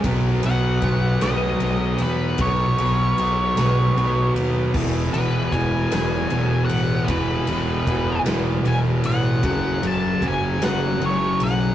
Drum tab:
CC |------|------|x-----|------|
RD |xxxxxx|xxxxxx|-xxxxx|xxxxxx|
SD |---o--|---o--|---o--|---o--|
BD |o-o---|o-----|o-o---|o-o---|

CC |------|
RD |xxxxxx|
SD |---o--|
BD |o-o---|